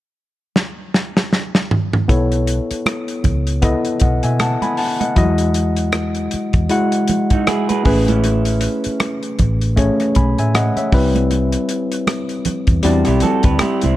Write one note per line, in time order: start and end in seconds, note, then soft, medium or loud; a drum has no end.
0.56 snare medium
0.94 snare medium
1.17 snare medium
1.33 snare medium
1.55 snare medium
1.71 mid tom medium
1.93 mid tom medium
2.08 2.58 B1 medium
2.08 3.19 B3 medium
2.08 3.20 E4 medium
2.08 3.20 A4 medium
2.08 3.21 C#5 medium
2.08 kick loud
2.08 closed hi-hat medium
2.08 muted conga soft
2.32 closed hi-hat medium
2.47 closed hi-hat medium
2.71 muted fingered electric bass stroke soft
2.71 closed hi-hat soft
2.86 cross-stick loud
2.86 closed hi-hat medium
2.86 high conga medium
3.08 closed hi-hat soft
3.24 3.74 C#2 medium
3.24 kick medium
3.24 closed hi-hat medium
3.24 low conga medium
3.47 closed hi-hat soft
3.62 4.73 B3 medium
3.62 4.74 E4 medium
3.62 4.74 A4 medium
3.62 4.01 D#5 medium
3.62 kick medium
3.62 closed hi-hat medium
3.85 closed hi-hat soft
4.00 4.20 B1 medium
4.00 4.23 D#5 soft
4.00 4.23 F#5 medium
4.00 kick medium
4.00 closed hi-hat medium
4.00 muted conga soft
4.23 4.55 B2 medium
4.23 4.39 E5 medium
4.23 4.39 G#5 medium
4.23 closed hi-hat medium
4.40 4.62 F#5 soft
4.40 4.61 A5 medium
4.40 cross-stick loud
4.40 closed hi-hat medium
4.40 high conga medium
4.62 4.78 G#5 medium
4.62 4.77 B5 medium
4.62 closed hi-hat soft
4.62 high conga soft
4.77 4.99 F#5 medium
4.77 4.99 A5 medium
4.77 open hi-hat medium
5.00 5.17 D#5 soft
5.00 5.37 F#5 medium
5.00 closed hi-hat soft
5.00 high conga medium
5.16 6.28 E2 medium
5.16 5.24 F#3 medium
5.16 6.27 E4 medium
5.16 6.28 F#4 medium
5.16 6.28 D#5 medium
5.16 kick loud
5.16 closed hi-hat medium
5.16 muted conga soft
5.22 6.30 G#3 medium
5.38 closed hi-hat medium
5.54 closed hi-hat medium
5.77 closed hi-hat soft
5.92 cross-stick loud
5.92 closed hi-hat medium
5.92 high conga medium
6.15 closed hi-hat soft
6.31 muted fingered electric bass stroke soft
6.31 closed hi-hat medium
6.53 6.67 E2 medium
6.53 kick medium
6.53 closed hi-hat soft
6.69 7.81 G#3 medium
6.69 7.81 E4 medium
6.69 7.81 F#4 medium
6.69 7.82 F#5 medium
6.69 closed hi-hat medium
6.69 muted conga soft
6.92 closed hi-hat soft
7.08 closed hi-hat medium
7.08 muted conga soft
7.08 low conga medium
7.30 7.47 D#4 medium
7.30 7.47 F#4 medium
7.30 kick medium
7.30 closed hi-hat medium
7.47 7.68 E4 medium
7.47 7.68 G#4 medium
7.47 cross-stick medium
7.47 closed hi-hat medium
7.47 high conga medium
7.69 7.84 G#4 medium
7.69 7.84 B4 medium
7.69 closed hi-hat soft
7.69 high conga medium
7.84 8.66 A1 medium
7.84 9.09 A3 medium
7.84 9.09 C#4 medium
7.84 8.06 E4 medium
7.84 8.06 G#4 medium
7.84 9.10 G#4 medium
7.84 9.10 B4 medium
7.84 kick loud
7.84 open hi-hat medium
8.08 9.19 C#4 medium
8.08 9.19 E4 medium
8.08 closed hi-hat medium
8.08 high conga medium
8.24 closed hi-hat medium
8.24 muted conga soft
8.45 closed hi-hat medium
8.61 closed hi-hat medium
8.84 muted fingered electric bass stroke soft
8.84 closed hi-hat soft
9.00 cross-stick loud
9.00 closed hi-hat medium
9.00 high conga medium
9.23 closed hi-hat soft
9.39 9.89 A1 medium
9.39 kick medium
9.39 closed hi-hat medium
9.39 low conga medium
9.61 closed hi-hat soft
9.76 10.88 A3 medium
9.76 10.88 C#4 medium
9.76 10.88 G#4 medium
9.76 10.16 C#5 medium
9.76 kick medium
9.76 closed hi-hat medium
9.76 muted conga soft
10.00 cross-stick soft
10.00 closed hi-hat soft
10.15 10.34 B1 medium
10.15 10.38 G#5 soft
10.15 10.37 B5 medium
10.15 kick medium
10.15 closed hi-hat medium
10.15 muted conga soft
10.38 10.70 A2 medium
10.38 10.54 E5 medium
10.38 10.54 G#5 medium
10.38 closed hi-hat medium
10.55 10.76 D#5 medium
10.55 10.76 F#5 medium
10.55 cross-stick loud
10.55 closed hi-hat medium
10.55 high conga medium
10.76 11.14 C#5 soft
10.76 11.13 E5 medium
10.76 closed hi-hat soft
10.76 high conga soft
10.92 11.55 C2 medium
10.92 12.16 G3 medium
10.92 12.17 C4 medium
10.92 12.17 E4 medium
10.92 12.17 B4 medium
10.92 kick loud
10.92 cross-stick soft
10.92 open hi-hat medium
11.15 closed hi-hat medium
11.15 high conga medium
11.31 closed hi-hat medium
11.31 muted conga soft
11.52 closed hi-hat medium
11.69 closed hi-hat medium
11.92 closed hi-hat soft
12.07 cross-stick loud
12.07 closed hi-hat medium
12.07 high conga medium
12.29 closed hi-hat soft
12.45 muted fingered electric bass stroke soft
12.45 closed hi-hat medium
12.45 low conga medium
12.67 12.81 E2 medium
12.67 kick medium
12.67 closed hi-hat soft
12.83 13.03 E2 medium
12.83 13.95 G3 medium
12.83 13.95 C4 medium
12.83 13.06 D4 medium
12.83 13.95 E4 medium
12.83 13.06 F#4 medium
12.83 13.96 D5 medium
12.83 closed hi-hat medium
12.83 muted conga soft
13.05 13.20 B1 medium
13.05 13.22 E4 medium
13.05 13.22 G4 medium
13.05 cross-stick soft
13.05 closed hi-hat soft
13.20 13.44 F#4 medium
13.20 13.44 A4 medium
13.20 closed hi-hat medium
13.20 muted conga soft
13.20 low conga medium
13.43 13.58 D2 medium
13.43 13.59 G4 medium
13.43 13.60 B4 medium
13.43 kick medium
13.43 closed hi-hat soft
13.59 13.82 E4 medium
13.59 13.82 G4 medium
13.59 muted fingered electric bass stroke soft
13.59 cross-stick medium
13.59 closed hi-hat medium
13.59 high conga medium
13.82 13.97 C2 medium
13.82 13.97 C4 soft
13.82 13.97 E4 medium
13.82 closed hi-hat soft
13.82 high conga medium